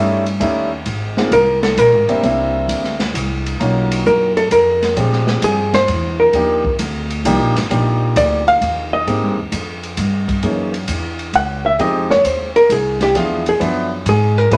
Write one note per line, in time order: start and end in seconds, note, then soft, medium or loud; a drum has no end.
0.00 0.39 G2 medium
0.00 0.23 G3 medium
0.00 0.22 A3 medium
0.00 0.23 C#4 medium
0.00 0.22 D#4 medium
0.00 0.23 E4 medium
0.26 ride soft
0.40 0.85 D#2 loud
0.40 0.68 G3 medium
0.40 0.68 A3 medium
0.40 0.68 C#4 medium
0.40 0.69 D#4 medium
0.40 0.68 E4 medium
0.40 kick soft
0.40 ride medium
0.86 1.30 G#1 medium
0.86 kick soft
0.86 ride medium
1.17 1.30 G#3 medium
1.17 1.31 A#3 medium
1.17 1.30 C4 medium
1.17 1.31 D#4 medium
1.17 1.30 F4 medium
1.17 snare medium
1.31 1.76 C2 medium
1.31 1.63 A#4 medium
1.31 kick soft
1.31 hi-hat pedal medium
1.31 ride medium
1.63 1.79 A4 medium
1.63 snare medium
1.63 ride soft
1.77 1.92 A#1 medium
1.77 2.24 A#4 medium
1.77 kick soft
1.77 hi-hat pedal medium
1.77 ride medium
1.92 2.08 G#1 medium
2.08 2.22 F1 medium
2.08 2.21 G3 medium
2.08 2.22 A#3 medium
2.08 2.22 C4 medium
2.08 2.22 D4 medium
2.08 2.22 E4 medium
2.08 ride medium
2.23 2.67 C2 medium
2.23 2.94 G3 medium
2.23 2.94 A#3 medium
2.23 2.94 C4 medium
2.23 2.94 D4 medium
2.23 2.94 E4 medium
2.23 kick soft
2.23 ride medium
2.68 3.13 D2 medium
2.68 kick soft
2.68 ride medium
2.84 snare soft
3.00 snare soft
3.00 ride soft
3.14 3.59 C2 medium
3.14 kick soft
3.14 hi-hat pedal medium
3.14 ride medium
3.46 ride medium
3.59 4.04 B1 medium
3.59 4.31 F#3 medium
3.59 4.30 A#3 medium
3.59 4.31 C#4 medium
3.59 4.31 D#4 medium
3.59 4.31 F4 medium
3.59 kick soft
3.59 ride medium
3.91 ride medium
4.06 4.50 F#2 loud
4.06 4.37 A#4 medium
4.06 kick soft
4.06 hi-hat pedal medium
4.37 4.51 A4 medium
4.37 ride soft
4.51 4.95 F2 loud
4.51 4.94 A#4 medium
4.51 kick soft
4.51 hi-hat pedal medium
4.51 ride medium
4.82 snare soft
4.82 ride medium
4.96 5.41 A#2 medium
4.96 5.67 F3 medium
4.96 5.67 G#3 medium
4.96 5.67 C4 medium
4.96 5.67 D4 medium
4.96 5.68 G4 medium
4.96 kick soft
4.96 ride medium
5.12 snare soft
5.27 snare medium
5.42 5.86 G2 medium
5.42 5.74 G#4 medium
5.42 kick soft
5.42 hi-hat pedal medium
5.42 ride medium
5.73 6.16 C5 loud
5.73 snare medium
5.73 ride soft
5.88 6.32 E2 loud
5.88 kick soft
5.88 ride medium
6.20 6.75 A#4 medium
6.33 6.77 D#2 medium
6.33 6.62 F3 medium
6.33 6.62 A#3 medium
6.33 6.62 D4 medium
6.33 6.62 D#4 medium
6.33 6.62 G4 medium
6.33 kick soft
6.33 ride medium
6.65 kick medium
6.79 7.23 D2 medium
6.79 kick soft
6.79 hi-hat pedal medium
6.79 ride medium
7.10 ride medium
7.25 7.40 C2 loud
7.25 7.53 F3 medium
7.25 7.53 A#3 medium
7.25 7.53 D4 medium
7.25 7.53 D#4 medium
7.25 7.53 G4 medium
7.25 kick soft
7.25 hi-hat pedal medium
7.25 ride medium
7.40 7.55 A#1 medium
7.55 7.69 G1 medium
7.55 snare soft
7.55 ride medium
7.70 8.14 A#1 medium
7.70 8.98 F3 medium
7.70 8.98 A#3 medium
7.70 8.98 D4 medium
7.70 8.98 D#4 medium
7.70 8.98 G4 medium
7.70 kick soft
7.70 ride medium
8.16 8.60 D2 loud
8.16 8.47 D5 medium
8.16 kick soft
8.16 hi-hat pedal medium
8.16 ride medium
8.48 8.90 F5 loud
8.48 ride soft
8.61 9.05 D#2 loud
8.61 kick soft
8.61 ride medium
8.93 9.48 D#5 medium
9.07 9.22 G#2 medium
9.07 9.35 G#3 medium
9.07 9.35 A#3 medium
9.07 9.35 C4 medium
9.07 9.35 D#4 medium
9.07 9.35 G4 medium
9.07 kick soft
9.07 ride medium
9.22 9.37 G2 soft
9.38 9.51 D#2 medium
9.52 9.96 F2 medium
9.52 kick soft
9.52 hi-hat pedal medium
9.52 ride medium
9.83 ride soft
9.97 10.41 G2 medium
9.97 kick soft
9.97 hi-hat pedal medium
9.97 ride medium
10.28 kick medium
10.28 ride soft
10.42 10.87 F#2 medium
10.42 10.71 E3 medium
10.42 10.71 A#3 medium
10.42 10.71 C#4 medium
10.42 10.71 D#4 medium
10.42 10.71 G#4 medium
10.42 kick soft
10.42 ride medium
10.74 ride soft
10.88 11.32 E2 loud
10.88 kick soft
10.88 hi-hat pedal medium
10.88 ride medium
11.19 ride soft
11.33 11.78 C#2 medium
11.33 11.65 F#5 medium
11.33 kick soft
11.33 ride medium
11.66 11.79 E5 medium
11.79 12.23 F2 medium
11.79 12.07 F3 medium
11.79 12.07 G#3 medium
11.79 12.07 C4 medium
11.79 12.07 D#4 medium
11.79 12.07 G4 medium
11.79 12.10 D#5 medium
11.79 kick soft
11.79 ride medium
12.10 12.25 C#5 medium
12.10 snare medium
12.24 12.69 D#2 medium
12.24 12.55 C5 medium
12.24 kick soft
12.24 hi-hat pedal medium
12.24 ride medium
12.56 12.70 A#4 medium
12.56 ride soft
12.69 13.14 C2 medium
12.69 13.01 G#4 medium
12.69 kick soft
12.69 hi-hat pedal medium
12.69 ride medium
13.00 13.17 G4 medium
13.00 snare soft
13.00 ride medium
13.14 13.59 E2 medium
13.14 13.43 F3 medium
13.14 13.43 B3 medium
13.14 13.43 D4 medium
13.14 13.43 E4 medium
13.14 13.46 F4 medium
13.14 13.43 G#4 medium
13.14 kick soft
13.14 ride medium
13.46 13.57 G#4 medium
13.46 ride medium
13.59 14.05 F#2 medium
13.59 13.88 F3 medium
13.59 13.88 B3 medium
13.59 13.88 D4 medium
13.59 13.88 E4 medium
13.59 13.88 B4 medium
13.59 kick soft
13.59 ride medium
14.06 14.50 G#2 loud
14.06 14.38 G#4 medium
14.06 kick soft
14.06 hi-hat pedal soft
14.06 ride medium
14.38 14.51 A#4 medium
14.51 14.57 A2 medium
14.51 14.57 A3 medium
14.51 14.57 B3 medium
14.51 14.57 C#4 medium
14.51 14.57 E4 medium
14.51 14.57 G#4 medium
14.51 14.57 B4 medium
14.51 kick soft
14.51 ride medium